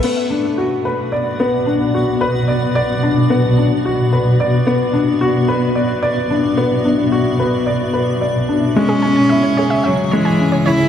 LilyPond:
<<
  \new Staff \with { instrumentName = "Synth arpeggio sound" } { \time 4/4 \key b \dorian \tempo 4 = 110 r1 | r1 | r1 | r1 |
r16 gis'16 gis''16 gis''16 e''16 cis''16 cis''16 e''16 e''16 r16 cis''16 gis''16 r16 cis''16 cis''16 r16 | }
  \new Staff \with { instrumentName = "Ambient pad" } { \time 4/4 \key b \dorian << { fis''1~ | fis''1 | e''1~ | e''1 |
gis''1 | } \\ { <b, b fis' d''>1~ | <b, b fis' d''>1~ | <b, b fis' d''>1~ | <b, b fis' d''>1 |
<cis cis' gis'>1 | } >> }
  \new Staff \with { instrumentName = "Grand piano" } { \time 4/4 \key b \dorian b8 d'8 fis'8 b'8 d''8 b8 d'8 fis'8 | b'8 d''8 d''8 d'8 b8 d'8 fis'8 b'8 | d''8 b8 d'8 fis'8 b'8 d''8 d''8 d'8 | b8 d'8 fis'8 b'8 d''8 b'8 d''8 d'8 |
gis8 cis'8 e'8 gis'8 cis''8 gis8 cis'8 e'8 | }
  \new Staff \with { instrumentName = "Cello" } { \time 4/4 \key b \dorian r1 | r1 | r1 | r1 |
cis'2 fis8 e4 e'8 | }
  \new DrumStaff \with { instrumentName = "Drums" } \drummode { \time 4/4 cymc4 r4 r4 r4 | r4 r4 r4 r4 | r4 r4 r4 r4 | r4 r4 r4 r4 |
r4 r4 r4 r4 | }
>>